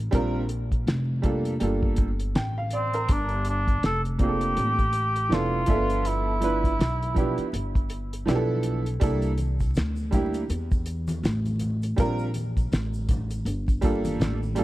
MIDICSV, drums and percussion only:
0, 0, Header, 1, 2, 480
1, 0, Start_track
1, 0, Tempo, 740741
1, 82, Time_signature, 4, 2, 24, 8
1, 9486, End_track
2, 0, Start_track
2, 0, Title_t, "Drums"
2, 81, Note_on_c, 9, 42, 100
2, 84, Note_on_c, 9, 36, 110
2, 146, Note_off_c, 9, 42, 0
2, 149, Note_off_c, 9, 36, 0
2, 317, Note_on_c, 9, 42, 59
2, 382, Note_off_c, 9, 42, 0
2, 464, Note_on_c, 9, 36, 73
2, 467, Note_on_c, 9, 42, 44
2, 529, Note_off_c, 9, 36, 0
2, 531, Note_off_c, 9, 42, 0
2, 567, Note_on_c, 9, 42, 78
2, 572, Note_on_c, 9, 38, 95
2, 632, Note_off_c, 9, 42, 0
2, 637, Note_off_c, 9, 38, 0
2, 800, Note_on_c, 9, 42, 68
2, 802, Note_on_c, 9, 36, 93
2, 865, Note_off_c, 9, 42, 0
2, 867, Note_off_c, 9, 36, 0
2, 941, Note_on_c, 9, 42, 51
2, 1006, Note_off_c, 9, 42, 0
2, 1039, Note_on_c, 9, 42, 71
2, 1103, Note_off_c, 9, 42, 0
2, 1184, Note_on_c, 9, 36, 76
2, 1249, Note_off_c, 9, 36, 0
2, 1273, Note_on_c, 9, 42, 66
2, 1284, Note_on_c, 9, 36, 88
2, 1338, Note_off_c, 9, 42, 0
2, 1349, Note_off_c, 9, 36, 0
2, 1423, Note_on_c, 9, 42, 52
2, 1488, Note_off_c, 9, 42, 0
2, 1525, Note_on_c, 9, 42, 84
2, 1528, Note_on_c, 9, 38, 106
2, 1590, Note_off_c, 9, 42, 0
2, 1593, Note_off_c, 9, 38, 0
2, 1753, Note_on_c, 9, 42, 65
2, 1817, Note_off_c, 9, 42, 0
2, 1901, Note_on_c, 9, 42, 54
2, 1966, Note_off_c, 9, 42, 0
2, 1999, Note_on_c, 9, 42, 100
2, 2003, Note_on_c, 9, 36, 119
2, 2064, Note_off_c, 9, 42, 0
2, 2068, Note_off_c, 9, 36, 0
2, 2129, Note_on_c, 9, 42, 31
2, 2194, Note_off_c, 9, 42, 0
2, 2233, Note_on_c, 9, 42, 59
2, 2298, Note_off_c, 9, 42, 0
2, 2381, Note_on_c, 9, 36, 78
2, 2383, Note_on_c, 9, 42, 42
2, 2446, Note_off_c, 9, 36, 0
2, 2448, Note_off_c, 9, 42, 0
2, 2483, Note_on_c, 9, 42, 72
2, 2488, Note_on_c, 9, 38, 94
2, 2548, Note_off_c, 9, 42, 0
2, 2553, Note_off_c, 9, 38, 0
2, 2626, Note_on_c, 9, 42, 36
2, 2690, Note_off_c, 9, 42, 0
2, 2716, Note_on_c, 9, 42, 64
2, 2719, Note_on_c, 9, 36, 90
2, 2781, Note_off_c, 9, 42, 0
2, 2784, Note_off_c, 9, 36, 0
2, 2857, Note_on_c, 9, 42, 52
2, 2922, Note_off_c, 9, 42, 0
2, 2960, Note_on_c, 9, 42, 69
2, 3024, Note_off_c, 9, 42, 0
2, 3102, Note_on_c, 9, 36, 71
2, 3104, Note_on_c, 9, 42, 33
2, 3166, Note_off_c, 9, 36, 0
2, 3169, Note_off_c, 9, 42, 0
2, 3192, Note_on_c, 9, 42, 67
2, 3257, Note_off_c, 9, 42, 0
2, 3342, Note_on_c, 9, 42, 49
2, 3407, Note_off_c, 9, 42, 0
2, 3449, Note_on_c, 9, 42, 80
2, 3452, Note_on_c, 9, 38, 109
2, 3514, Note_off_c, 9, 42, 0
2, 3517, Note_off_c, 9, 38, 0
2, 3670, Note_on_c, 9, 42, 68
2, 3681, Note_on_c, 9, 36, 100
2, 3734, Note_off_c, 9, 42, 0
2, 3746, Note_off_c, 9, 36, 0
2, 3822, Note_on_c, 9, 42, 55
2, 3886, Note_off_c, 9, 42, 0
2, 3920, Note_on_c, 9, 42, 92
2, 3985, Note_off_c, 9, 42, 0
2, 4158, Note_on_c, 9, 42, 59
2, 4222, Note_off_c, 9, 42, 0
2, 4303, Note_on_c, 9, 36, 71
2, 4308, Note_on_c, 9, 42, 42
2, 4368, Note_off_c, 9, 36, 0
2, 4372, Note_off_c, 9, 42, 0
2, 4410, Note_on_c, 9, 42, 74
2, 4415, Note_on_c, 9, 38, 93
2, 4474, Note_off_c, 9, 42, 0
2, 4479, Note_off_c, 9, 38, 0
2, 4552, Note_on_c, 9, 42, 36
2, 4617, Note_off_c, 9, 42, 0
2, 4642, Note_on_c, 9, 36, 85
2, 4642, Note_on_c, 9, 42, 74
2, 4707, Note_off_c, 9, 36, 0
2, 4707, Note_off_c, 9, 42, 0
2, 4781, Note_on_c, 9, 42, 47
2, 4845, Note_off_c, 9, 42, 0
2, 4884, Note_on_c, 9, 42, 74
2, 4949, Note_off_c, 9, 42, 0
2, 5024, Note_on_c, 9, 36, 78
2, 5028, Note_on_c, 9, 42, 32
2, 5089, Note_off_c, 9, 36, 0
2, 5092, Note_off_c, 9, 42, 0
2, 5117, Note_on_c, 9, 42, 73
2, 5182, Note_off_c, 9, 42, 0
2, 5269, Note_on_c, 9, 42, 48
2, 5333, Note_off_c, 9, 42, 0
2, 5367, Note_on_c, 9, 42, 89
2, 5370, Note_on_c, 9, 38, 101
2, 5432, Note_off_c, 9, 42, 0
2, 5435, Note_off_c, 9, 38, 0
2, 5593, Note_on_c, 9, 42, 67
2, 5657, Note_off_c, 9, 42, 0
2, 5743, Note_on_c, 9, 42, 51
2, 5808, Note_off_c, 9, 42, 0
2, 5840, Note_on_c, 9, 42, 103
2, 5843, Note_on_c, 9, 36, 111
2, 5845, Note_on_c, 9, 82, 59
2, 5905, Note_off_c, 9, 42, 0
2, 5908, Note_off_c, 9, 36, 0
2, 5909, Note_off_c, 9, 82, 0
2, 5975, Note_on_c, 9, 42, 34
2, 5975, Note_on_c, 9, 82, 45
2, 6040, Note_off_c, 9, 42, 0
2, 6040, Note_off_c, 9, 82, 0
2, 6076, Note_on_c, 9, 42, 59
2, 6086, Note_on_c, 9, 63, 41
2, 6086, Note_on_c, 9, 82, 40
2, 6140, Note_off_c, 9, 42, 0
2, 6151, Note_off_c, 9, 63, 0
2, 6151, Note_off_c, 9, 82, 0
2, 6221, Note_on_c, 9, 82, 41
2, 6224, Note_on_c, 9, 36, 71
2, 6228, Note_on_c, 9, 42, 39
2, 6285, Note_off_c, 9, 82, 0
2, 6289, Note_off_c, 9, 36, 0
2, 6292, Note_off_c, 9, 42, 0
2, 6316, Note_on_c, 9, 82, 58
2, 6329, Note_on_c, 9, 42, 88
2, 6334, Note_on_c, 9, 38, 100
2, 6381, Note_off_c, 9, 82, 0
2, 6394, Note_off_c, 9, 42, 0
2, 6399, Note_off_c, 9, 38, 0
2, 6454, Note_on_c, 9, 82, 42
2, 6519, Note_off_c, 9, 82, 0
2, 6561, Note_on_c, 9, 42, 68
2, 6562, Note_on_c, 9, 36, 92
2, 6565, Note_on_c, 9, 64, 60
2, 6565, Note_on_c, 9, 82, 45
2, 6626, Note_off_c, 9, 42, 0
2, 6627, Note_off_c, 9, 36, 0
2, 6630, Note_off_c, 9, 64, 0
2, 6630, Note_off_c, 9, 82, 0
2, 6699, Note_on_c, 9, 82, 43
2, 6701, Note_on_c, 9, 42, 54
2, 6764, Note_off_c, 9, 82, 0
2, 6766, Note_off_c, 9, 42, 0
2, 6803, Note_on_c, 9, 42, 75
2, 6803, Note_on_c, 9, 82, 47
2, 6867, Note_off_c, 9, 42, 0
2, 6868, Note_off_c, 9, 82, 0
2, 6944, Note_on_c, 9, 36, 82
2, 6945, Note_on_c, 9, 82, 37
2, 6947, Note_on_c, 9, 42, 29
2, 7009, Note_off_c, 9, 36, 0
2, 7009, Note_off_c, 9, 82, 0
2, 7012, Note_off_c, 9, 42, 0
2, 7036, Note_on_c, 9, 42, 65
2, 7046, Note_on_c, 9, 82, 40
2, 7101, Note_off_c, 9, 42, 0
2, 7111, Note_off_c, 9, 82, 0
2, 7178, Note_on_c, 9, 63, 74
2, 7178, Note_on_c, 9, 82, 50
2, 7186, Note_on_c, 9, 42, 50
2, 7243, Note_off_c, 9, 63, 0
2, 7243, Note_off_c, 9, 82, 0
2, 7250, Note_off_c, 9, 42, 0
2, 7284, Note_on_c, 9, 63, 35
2, 7284, Note_on_c, 9, 64, 52
2, 7284, Note_on_c, 9, 82, 50
2, 7290, Note_on_c, 9, 42, 89
2, 7293, Note_on_c, 9, 38, 95
2, 7349, Note_off_c, 9, 63, 0
2, 7349, Note_off_c, 9, 64, 0
2, 7349, Note_off_c, 9, 82, 0
2, 7355, Note_off_c, 9, 42, 0
2, 7358, Note_off_c, 9, 38, 0
2, 7422, Note_on_c, 9, 42, 33
2, 7425, Note_on_c, 9, 63, 52
2, 7425, Note_on_c, 9, 82, 36
2, 7487, Note_off_c, 9, 42, 0
2, 7490, Note_off_c, 9, 63, 0
2, 7490, Note_off_c, 9, 82, 0
2, 7513, Note_on_c, 9, 42, 69
2, 7524, Note_on_c, 9, 64, 52
2, 7524, Note_on_c, 9, 82, 39
2, 7578, Note_off_c, 9, 42, 0
2, 7588, Note_off_c, 9, 64, 0
2, 7588, Note_off_c, 9, 82, 0
2, 7661, Note_on_c, 9, 82, 41
2, 7667, Note_on_c, 9, 42, 55
2, 7726, Note_off_c, 9, 82, 0
2, 7732, Note_off_c, 9, 42, 0
2, 7762, Note_on_c, 9, 42, 94
2, 7764, Note_on_c, 9, 36, 119
2, 7764, Note_on_c, 9, 82, 55
2, 7827, Note_off_c, 9, 42, 0
2, 7828, Note_off_c, 9, 82, 0
2, 7829, Note_off_c, 9, 36, 0
2, 7895, Note_on_c, 9, 82, 41
2, 7960, Note_off_c, 9, 82, 0
2, 7996, Note_on_c, 9, 42, 65
2, 8008, Note_on_c, 9, 63, 42
2, 8008, Note_on_c, 9, 82, 45
2, 8061, Note_off_c, 9, 42, 0
2, 8073, Note_off_c, 9, 63, 0
2, 8073, Note_off_c, 9, 82, 0
2, 8144, Note_on_c, 9, 36, 77
2, 8147, Note_on_c, 9, 82, 39
2, 8148, Note_on_c, 9, 42, 38
2, 8209, Note_off_c, 9, 36, 0
2, 8212, Note_off_c, 9, 82, 0
2, 8213, Note_off_c, 9, 42, 0
2, 8246, Note_on_c, 9, 82, 57
2, 8247, Note_on_c, 9, 42, 73
2, 8252, Note_on_c, 9, 38, 101
2, 8311, Note_off_c, 9, 82, 0
2, 8312, Note_off_c, 9, 42, 0
2, 8317, Note_off_c, 9, 38, 0
2, 8383, Note_on_c, 9, 82, 46
2, 8448, Note_off_c, 9, 82, 0
2, 8480, Note_on_c, 9, 42, 69
2, 8482, Note_on_c, 9, 36, 91
2, 8494, Note_on_c, 9, 64, 58
2, 8494, Note_on_c, 9, 82, 46
2, 8545, Note_off_c, 9, 42, 0
2, 8546, Note_off_c, 9, 36, 0
2, 8558, Note_off_c, 9, 64, 0
2, 8558, Note_off_c, 9, 82, 0
2, 8622, Note_on_c, 9, 42, 52
2, 8623, Note_on_c, 9, 82, 46
2, 8687, Note_off_c, 9, 42, 0
2, 8688, Note_off_c, 9, 82, 0
2, 8723, Note_on_c, 9, 42, 70
2, 8725, Note_on_c, 9, 82, 53
2, 8788, Note_off_c, 9, 42, 0
2, 8790, Note_off_c, 9, 82, 0
2, 8865, Note_on_c, 9, 36, 85
2, 8867, Note_on_c, 9, 82, 41
2, 8868, Note_on_c, 9, 42, 34
2, 8929, Note_off_c, 9, 36, 0
2, 8932, Note_off_c, 9, 82, 0
2, 8933, Note_off_c, 9, 42, 0
2, 8955, Note_on_c, 9, 42, 63
2, 8964, Note_on_c, 9, 36, 93
2, 8966, Note_on_c, 9, 82, 43
2, 9020, Note_off_c, 9, 42, 0
2, 9029, Note_off_c, 9, 36, 0
2, 9031, Note_off_c, 9, 82, 0
2, 9102, Note_on_c, 9, 63, 67
2, 9102, Note_on_c, 9, 82, 51
2, 9107, Note_on_c, 9, 42, 50
2, 9167, Note_off_c, 9, 63, 0
2, 9167, Note_off_c, 9, 82, 0
2, 9172, Note_off_c, 9, 42, 0
2, 9206, Note_on_c, 9, 63, 36
2, 9206, Note_on_c, 9, 64, 54
2, 9206, Note_on_c, 9, 82, 51
2, 9210, Note_on_c, 9, 42, 86
2, 9213, Note_on_c, 9, 38, 108
2, 9271, Note_off_c, 9, 63, 0
2, 9271, Note_off_c, 9, 64, 0
2, 9271, Note_off_c, 9, 82, 0
2, 9275, Note_off_c, 9, 42, 0
2, 9278, Note_off_c, 9, 38, 0
2, 9351, Note_on_c, 9, 63, 46
2, 9351, Note_on_c, 9, 82, 34
2, 9416, Note_off_c, 9, 63, 0
2, 9416, Note_off_c, 9, 82, 0
2, 9434, Note_on_c, 9, 42, 68
2, 9447, Note_on_c, 9, 64, 47
2, 9447, Note_on_c, 9, 82, 32
2, 9486, Note_off_c, 9, 42, 0
2, 9486, Note_off_c, 9, 64, 0
2, 9486, Note_off_c, 9, 82, 0
2, 9486, End_track
0, 0, End_of_file